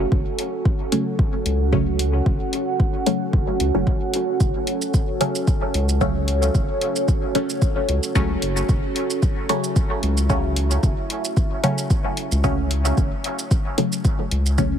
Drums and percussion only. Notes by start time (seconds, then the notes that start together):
0.12 kick
0.39 open hi-hat
0.65 kick
0.92 open hi-hat
1.19 kick
1.46 open hi-hat
1.73 kick
1.99 open hi-hat
2.26 kick
2.53 open hi-hat
2.80 kick
3.06 open hi-hat
3.33 kick
3.60 open hi-hat
3.87 kick
4.14 open hi-hat
4.40 kick, shaker
4.67 open hi-hat
4.82 shaker
4.94 kick, shaker
5.21 open hi-hat
5.35 shaker
5.47 kick, shaker
5.74 open hi-hat
5.89 shaker
6.01 kick, shaker
6.28 open hi-hat
6.42 shaker
6.55 kick, shaker
6.81 open hi-hat
6.96 shaker
7.08 kick, shaker
7.35 open hi-hat
7.50 shaker
7.62 kick, shaker
7.89 open hi-hat
8.03 shaker
8.15 kick, shaker
8.42 open hi-hat
8.57 shaker
8.69 kick, shaker
8.96 open hi-hat
9.10 shaker
9.23 kick, shaker
9.49 open hi-hat
9.64 shaker
9.76 kick, shaker
10.03 open hi-hat
10.17 shaker
10.30 kick, shaker
10.56 open hi-hat
10.71 shaker
10.83 kick, shaker
11.10 open hi-hat
11.25 shaker
11.37 kick, shaker
11.64 open hi-hat
11.78 shaker
11.90 kick, shaker
12.17 open hi-hat
12.32 shaker
12.44 kick, shaker
12.71 open hi-hat
12.85 shaker
12.97 kick, shaker
13.24 open hi-hat
13.39 shaker
13.51 kick, shaker
13.78 open hi-hat
13.92 shaker
14.05 kick, shaker
14.31 open hi-hat
14.46 shaker
14.58 kick, shaker